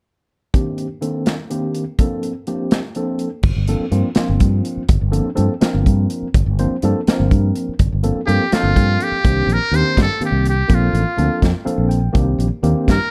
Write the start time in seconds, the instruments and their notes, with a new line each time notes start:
0.54 tine electric piano D#3 A#3 C4 D4 G4, kick, closed hi-hat
0.78 closed hi-hat
1.01 tine electric piano D#3 A#3 C4 D4 A4, closed hi-hat
1.26 snare, closed hi-hat
1.50 tine electric piano D#3 A#3 C4 D4 G4, closed hi-hat
1.75 closed hi-hat
1.99 tine electric piano F3 A#3 C4 D4 A4, kick, closed hi-hat
2.23 closed hi-hat
2.47 tine electric piano F3 A#3 C4 D4 G4, closed hi-hat
2.71 snare, closed hi-hat
2.95 tine electric piano F3 A#3 C4 D4 A4, closed hi-hat
3.19 closed hi-hat
3.43 fretless electric bass G1, kick, crash
3.56 fretless electric bass G1
3.68 tine electric piano F3 A#3 C4 D4 A4, closed hi-hat
3.80 muted fretless electric bass stroke
3.91 fretless electric bass G2, tine electric piano F3 A#3 C4 D4 F4, closed hi-hat
4.15 tine electric piano F3 A#3 C4 D4 F4, muted fretless electric bass stroke, snare, closed hi-hat
4.29 fretless electric bass G1
4.40 fretless electric bass G2, kick, closed hi-hat
4.65 closed hi-hat
4.77 muted fretless electric bass stroke
4.89 fretless electric bass G1, kick, closed hi-hat
5.01 fretless electric bass G1
5.11 tine electric piano F3 A#3 C4 D4 A4, closed hi-hat
5.35 fretless electric bass G2, tine electric piano F3 A#3 C4 D4 A4, closed hi-hat
5.61 tine electric piano F3 A#3 C4 D4 A#4, muted fretless electric bass stroke, snare, closed hi-hat
5.74 fretless electric bass G1
5.86 fretless electric bass G2, kick, closed hi-hat
6.10 closed hi-hat
6.22 muted fretless electric bass stroke
6.34 fretless electric bass G1, kick, closed hi-hat
6.46 fretless electric bass G1
6.59 tine electric piano F3 A#3 C4 D4 C5, closed hi-hat
6.70 muted fretless electric bass stroke
6.82 fretless electric bass G2, tine electric piano F3 A#3 C4 D4 A4, closed hi-hat
7.07 tine electric piano F3 A#3 C4 D4 A#4, muted fretless electric bass stroke, snare, closed hi-hat
7.19 fretless electric bass G1
7.31 fretless electric bass G2, kick, closed hi-hat
7.56 closed hi-hat
7.69 muted fretless electric bass stroke
7.79 fretless electric bass G1, kick, closed hi-hat
7.92 fretless electric bass G1
8.03 tine electric piano F3 A#3 C4 D4 A4, closed hi-hat
8.16 muted fretless electric bass stroke
8.26 fretless electric bass G2, tine electric piano F3 A#3 C4 D4 A4, muted trumpet G4, closed hi-hat
8.52 tine electric piano F3 A#3 C4 D4 A4, muted trumpet F4, muted fretless electric bass stroke, snare, closed hi-hat
8.63 fretless electric bass G1
8.76 fretless electric bass G2, tine electric piano G5, kick, closed hi-hat
9.00 muted trumpet G4, tine electric piano F5, closed hi-hat
9.12 muted fretless electric bass stroke
9.24 fretless electric bass C2, tine electric piano D#3 A#3 C4 D4 G4, kick, closed hi-hat
9.47 fretless electric bass A#1, closed hi-hat
9.53 muted trumpet A#4
9.71 fretless electric bass D#2, tine electric piano D#3 A#3 C4 D4 G4, closed hi-hat
9.75 muted trumpet C5
9.97 fretless electric bass G2, kick, snare, closed hi-hat
10.02 muted trumpet A4
10.20 tine electric piano D#3 A#3 C4 D4 G4, muted fretless electric bass stroke, closed hi-hat
10.25 muted trumpet G4
10.32 fretless electric bass C2
10.46 muted trumpet G4, closed hi-hat
10.68 fretless electric bass A#1, tine electric piano F3 A#3 C4 D4 A4, kick, closed hi-hat
10.74 muted trumpet F4
10.93 fretless electric bass A1, closed hi-hat
11.17 fretless electric bass D2, tine electric piano F3 A#3 C4 D4 A4, closed hi-hat
11.42 fretless electric bass F2, kick, snare, closed hi-hat
11.65 tine electric piano F3 A#3 C4 D4 A4 F5, muted fretless electric bass stroke, closed hi-hat
11.78 fretless electric bass A#1
11.89 tine electric piano G5, closed hi-hat
12.12 fretless electric bass C2, tine electric piano D#3 A#3 C4 D4 G4, kick, closed hi-hat
12.38 fretless electric bass A#1, closed hi-hat
12.63 fretless electric bass D#2, tine electric piano D#3 A#3 C4 D4 G4, closed hi-hat
12.88 fretless electric bass G2, muted trumpet A#4, kick, snare, closed hi-hat